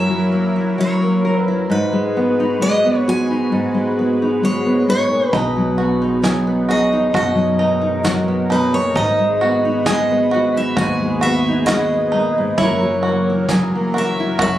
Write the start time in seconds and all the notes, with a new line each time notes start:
Already playing: F#2 F#3 A#3 E4 A#4 E5
0.09 F#3
0.32 A#3
0.56 E4
0.78 F#3 C#5
1.02 A#3
1.25 A#4
1.41 B4
1.48 E4
1.70 G#2 G#3 F#4 B4
1.93 G#3
2.17 B3
2.40 D#4
2.61 G#3 D#5
2.85 B3
3.08 F#4 G#5
3.31 D#4
3.52 G#2
3.74 G#3
3.99 B3
4.22 D#4
4.43 G#3 C#5
4.66 B3
4.89 G#2 C#5
5.11 A#2
5.32 B1 B2 G#3 B3 D#4 B4, kick
5.56 F#3
5.78 B3 F#4
6.02 D#4
6.24 F#3 G#4, kick, snare
6.47 B3
6.69 F#4 G#4 D#5
6.93 D#4
7.14 F#2 B2 F#4 A#4 D#5, kick
7.35 F#3
7.59 B3 D#4
7.82 D#4
8.04 F#3 F#4, kick, snare
8.28 B3
8.50 B2 D#4 B4
8.72 A#2 C#5
8.95 G#1 G#2 D#4 F#4 B4 D#5, kick
9.19 G#3
9.41 B3 F#4
9.65 D#4
9.86 G#3 G#4 D#5, kick, snare
10.11 B3
10.31 F#4
10.57 D#4 E5
10.76 D#2 G#2 F#4 G#4 G#5, kick
11.01 G#3
11.21 B3 F#4 E5
11.48 D#4
11.66 G#3 F#4 D#5, kick, snare
11.93 B3
12.12 A#2 D#4
12.38 G#2
12.58 F#1 F#2 E3 F#3 E4 A#4 C#5, kick
12.62 F#3 A#3 E4 A#4
12.83 F#3
13.03 F#4
13.08 A#3
13.30 E4
13.49 F#3 G#4, kick, snare
13.75 A#3
13.94 F#4 A#4
13.98 E5
14.20 E4
14.39 C#2 F#2 F#4 E5, kick